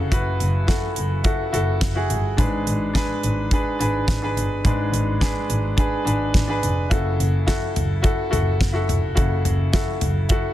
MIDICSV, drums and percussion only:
0, 0, Header, 1, 2, 480
1, 0, Start_track
1, 0, Key_signature, 3, "minor"
1, 0, Tempo, 566038
1, 98, Time_signature, 4, 2, 24, 8
1, 8933, End_track
2, 0, Start_track
2, 0, Title_t, "Drums"
2, 99, Note_on_c, 9, 36, 98
2, 103, Note_on_c, 9, 42, 78
2, 184, Note_off_c, 9, 36, 0
2, 188, Note_off_c, 9, 42, 0
2, 342, Note_on_c, 9, 42, 58
2, 427, Note_off_c, 9, 42, 0
2, 578, Note_on_c, 9, 36, 88
2, 583, Note_on_c, 9, 38, 94
2, 583, Note_on_c, 9, 42, 72
2, 663, Note_off_c, 9, 36, 0
2, 668, Note_off_c, 9, 38, 0
2, 668, Note_off_c, 9, 42, 0
2, 816, Note_on_c, 9, 42, 63
2, 900, Note_off_c, 9, 42, 0
2, 1054, Note_on_c, 9, 42, 73
2, 1057, Note_on_c, 9, 36, 105
2, 1138, Note_off_c, 9, 42, 0
2, 1142, Note_off_c, 9, 36, 0
2, 1303, Note_on_c, 9, 42, 63
2, 1388, Note_off_c, 9, 42, 0
2, 1537, Note_on_c, 9, 36, 94
2, 1537, Note_on_c, 9, 42, 79
2, 1538, Note_on_c, 9, 38, 92
2, 1622, Note_off_c, 9, 36, 0
2, 1622, Note_off_c, 9, 42, 0
2, 1623, Note_off_c, 9, 38, 0
2, 1781, Note_on_c, 9, 42, 61
2, 1866, Note_off_c, 9, 42, 0
2, 2020, Note_on_c, 9, 36, 97
2, 2023, Note_on_c, 9, 42, 83
2, 2105, Note_off_c, 9, 36, 0
2, 2108, Note_off_c, 9, 42, 0
2, 2264, Note_on_c, 9, 42, 60
2, 2349, Note_off_c, 9, 42, 0
2, 2501, Note_on_c, 9, 36, 89
2, 2508, Note_on_c, 9, 38, 98
2, 2508, Note_on_c, 9, 42, 80
2, 2586, Note_off_c, 9, 36, 0
2, 2592, Note_off_c, 9, 38, 0
2, 2593, Note_off_c, 9, 42, 0
2, 2743, Note_on_c, 9, 42, 63
2, 2827, Note_off_c, 9, 42, 0
2, 2978, Note_on_c, 9, 42, 82
2, 2979, Note_on_c, 9, 36, 104
2, 3063, Note_off_c, 9, 42, 0
2, 3064, Note_off_c, 9, 36, 0
2, 3227, Note_on_c, 9, 42, 65
2, 3312, Note_off_c, 9, 42, 0
2, 3459, Note_on_c, 9, 36, 97
2, 3463, Note_on_c, 9, 42, 72
2, 3464, Note_on_c, 9, 38, 88
2, 3544, Note_off_c, 9, 36, 0
2, 3548, Note_off_c, 9, 42, 0
2, 3549, Note_off_c, 9, 38, 0
2, 3708, Note_on_c, 9, 42, 60
2, 3793, Note_off_c, 9, 42, 0
2, 3941, Note_on_c, 9, 36, 99
2, 3944, Note_on_c, 9, 42, 80
2, 4026, Note_off_c, 9, 36, 0
2, 4029, Note_off_c, 9, 42, 0
2, 4185, Note_on_c, 9, 42, 64
2, 4270, Note_off_c, 9, 42, 0
2, 4421, Note_on_c, 9, 36, 86
2, 4428, Note_on_c, 9, 38, 92
2, 4428, Note_on_c, 9, 42, 80
2, 4506, Note_off_c, 9, 36, 0
2, 4513, Note_off_c, 9, 38, 0
2, 4513, Note_off_c, 9, 42, 0
2, 4662, Note_on_c, 9, 42, 64
2, 4747, Note_off_c, 9, 42, 0
2, 4899, Note_on_c, 9, 36, 100
2, 4899, Note_on_c, 9, 42, 77
2, 4983, Note_off_c, 9, 36, 0
2, 4984, Note_off_c, 9, 42, 0
2, 5148, Note_on_c, 9, 42, 65
2, 5233, Note_off_c, 9, 42, 0
2, 5378, Note_on_c, 9, 36, 100
2, 5381, Note_on_c, 9, 42, 70
2, 5383, Note_on_c, 9, 38, 95
2, 5463, Note_off_c, 9, 36, 0
2, 5466, Note_off_c, 9, 42, 0
2, 5468, Note_off_c, 9, 38, 0
2, 5623, Note_on_c, 9, 42, 67
2, 5708, Note_off_c, 9, 42, 0
2, 5861, Note_on_c, 9, 36, 95
2, 5864, Note_on_c, 9, 42, 83
2, 5946, Note_off_c, 9, 36, 0
2, 5949, Note_off_c, 9, 42, 0
2, 6107, Note_on_c, 9, 42, 61
2, 6192, Note_off_c, 9, 42, 0
2, 6340, Note_on_c, 9, 36, 84
2, 6343, Note_on_c, 9, 38, 95
2, 6343, Note_on_c, 9, 42, 74
2, 6425, Note_off_c, 9, 36, 0
2, 6428, Note_off_c, 9, 38, 0
2, 6428, Note_off_c, 9, 42, 0
2, 6583, Note_on_c, 9, 42, 67
2, 6584, Note_on_c, 9, 43, 58
2, 6667, Note_off_c, 9, 42, 0
2, 6669, Note_off_c, 9, 43, 0
2, 6816, Note_on_c, 9, 42, 74
2, 6819, Note_on_c, 9, 36, 103
2, 6901, Note_off_c, 9, 42, 0
2, 6903, Note_off_c, 9, 36, 0
2, 7062, Note_on_c, 9, 43, 58
2, 7064, Note_on_c, 9, 42, 66
2, 7146, Note_off_c, 9, 43, 0
2, 7149, Note_off_c, 9, 42, 0
2, 7298, Note_on_c, 9, 36, 102
2, 7302, Note_on_c, 9, 42, 75
2, 7303, Note_on_c, 9, 38, 97
2, 7383, Note_off_c, 9, 36, 0
2, 7387, Note_off_c, 9, 42, 0
2, 7388, Note_off_c, 9, 38, 0
2, 7540, Note_on_c, 9, 43, 59
2, 7542, Note_on_c, 9, 42, 63
2, 7624, Note_off_c, 9, 43, 0
2, 7627, Note_off_c, 9, 42, 0
2, 7776, Note_on_c, 9, 42, 78
2, 7779, Note_on_c, 9, 36, 94
2, 7860, Note_off_c, 9, 42, 0
2, 7863, Note_off_c, 9, 36, 0
2, 8015, Note_on_c, 9, 43, 50
2, 8016, Note_on_c, 9, 42, 61
2, 8099, Note_off_c, 9, 43, 0
2, 8101, Note_off_c, 9, 42, 0
2, 8255, Note_on_c, 9, 38, 99
2, 8255, Note_on_c, 9, 42, 74
2, 8256, Note_on_c, 9, 36, 92
2, 8339, Note_off_c, 9, 38, 0
2, 8339, Note_off_c, 9, 42, 0
2, 8340, Note_off_c, 9, 36, 0
2, 8491, Note_on_c, 9, 42, 64
2, 8492, Note_on_c, 9, 43, 56
2, 8576, Note_off_c, 9, 42, 0
2, 8577, Note_off_c, 9, 43, 0
2, 8728, Note_on_c, 9, 42, 79
2, 8733, Note_on_c, 9, 36, 103
2, 8813, Note_off_c, 9, 42, 0
2, 8818, Note_off_c, 9, 36, 0
2, 8933, End_track
0, 0, End_of_file